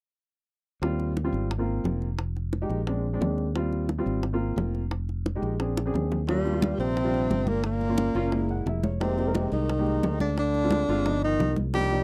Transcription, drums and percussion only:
0.83 high bongo
1.00 high bongo
1.17 high bongo
1.34 high bongo
1.51 high bongo
1.85 high bongo, low bongo
2.02 high bongo
2.19 high bongo
2.37 high bongo
2.53 high bongo
2.70 high bongo
2.87 high bongo
3.22 high bongo, low bongo
3.38 high bongo
3.56 high bongo
3.73 high bongo
3.89 high bongo
4.07 high bongo
4.23 high bongo
4.58 high bongo, low bongo
4.75 high bongo
4.91 high bongo
5.09 high bongo
5.26 high bongo
5.43 high bongo
5.60 high bongo
5.77 high bongo
5.95 low bongo
6.12 low bongo
6.28 high bongo, high conga
6.46 high bongo, high conga
6.62 high bongo, high conga
6.80 high bongo, high conga
6.97 high bongo, high conga
7.14 high conga
7.31 high bongo, low bongo, high conga
7.47 high bongo, high conga
7.64 high bongo, high conga
7.81 high bongo, high conga
7.98 high bongo, high conga
8.15 high bongo, high conga
8.32 high bongo, high conga
8.49 high conga
8.67 high bongo, low bongo, high conga
8.83 high bongo, high conga
9.01 high bongo, high conga
9.18 high bongo, high conga
9.35 high bongo, high conga
9.52 high bongo, high conga
9.70 high bongo, high conga
9.87 high conga
10.03 high bongo, low bongo, high conga
10.20 high bongo, high conga
10.37 high bongo, high conga
10.54 high bongo, high conga
10.71 high bongo, high conga
10.88 high bongo, high conga
11.05 high bongo, high conga
11.22 high conga
11.40 high bongo, low bongo, high conga
11.56 high bongo, high conga
11.74 high bongo, high conga
11.91 high bongo, high conga

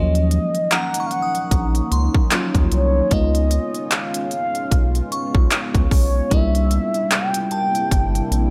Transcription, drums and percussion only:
0.15 closed hi-hat
0.31 closed hi-hat
0.55 closed hi-hat
0.71 clap, closed hi-hat
0.94 closed hi-hat
1.11 closed hi-hat
1.35 closed hi-hat
1.51 kick, closed hi-hat
1.75 closed hi-hat
1.92 closed hi-hat
2.14 kick
2.31 clap, closed hi-hat
2.55 kick, closed hi-hat
2.72 closed hi-hat
3.11 kick, closed hi-hat
3.35 closed hi-hat
3.51 closed hi-hat
3.74 closed hi-hat
3.91 clap, closed hi-hat
4.14 closed hi-hat
4.31 closed hi-hat
4.55 closed hi-hat
4.71 kick, closed hi-hat
4.95 closed hi-hat
5.12 closed hi-hat
5.35 kick
5.51 clap, closed hi-hat
5.75 kick, closed hi-hat
5.91 kick, open hi-hat
6.31 kick, closed hi-hat
6.55 closed hi-hat
6.71 closed hi-hat
6.94 closed hi-hat
7.11 clap, closed hi-hat
7.34 closed hi-hat
7.51 closed hi-hat
7.75 closed hi-hat
7.91 kick, closed hi-hat
8.15 closed hi-hat
8.32 closed hi-hat

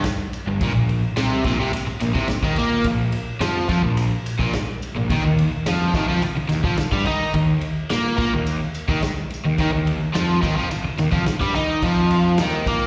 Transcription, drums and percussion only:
0.04 snare, ride, tambourine
0.33 ride, tambourine
0.61 kick, ride
0.89 ride
1.16 snare, ride, tambourine
1.44 kick, ride, tambourine
1.73 ride, tambourine
2.00 ride, tambourine
2.15 kick
2.28 snare, ride, tambourine
2.43 kick
2.56 ride, tambourine
2.84 kick, ride, tambourine
3.12 ride, tambourine
3.41 snare, ride, tambourine
3.69 kick, ride, tambourine
3.97 ride, tambourine
4.26 ride, tambourine
4.39 kick
4.53 snare, ride, tambourine
4.82 ride, tambourine
5.10 kick, ride
5.39 ride
5.66 snare, ride, tambourine
5.94 kick, ride, tambourine
6.22 ride, tambourine
6.49 ride, tambourine
6.64 kick
6.77 snare, ride, tambourine
6.92 kick
7.05 ride, tambourine
7.34 kick, ride
7.61 ride
7.90 snare, ride, tambourine
8.18 kick, ride, tambourine
8.46 ride, tambourine
8.75 ride, tambourine
8.88 kick
9.02 snare, ride, tambourine
9.30 ride, tambourine
9.58 kick, ride
9.87 ride
10.15 snare, ride, tambourine
10.43 kick, ride, tambourine
10.71 ride, tambourine
10.98 ride, tambourine
11.12 kick
11.26 snare, ride, tambourine
11.41 kick
11.55 ride, tambourine
11.82 kick, ride, tambourine
12.11 ride
12.38 snare, ride, tambourine
12.66 kick, ride, tambourine

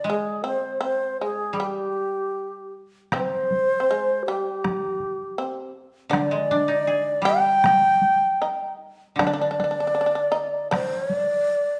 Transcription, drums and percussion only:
3.12 taiko rim, taiko high
3.51 taiko high
4.65 taiko rim, taiko high
5.00 taiko high
6.13 taiko rim, taiko high
6.52 taiko high
7.64 taiko rim, taiko high
8.02 taiko high
9.19 taiko rim, taiko high
9.59 taiko high
10.72 taiko rim, taiko high
11.10 taiko high

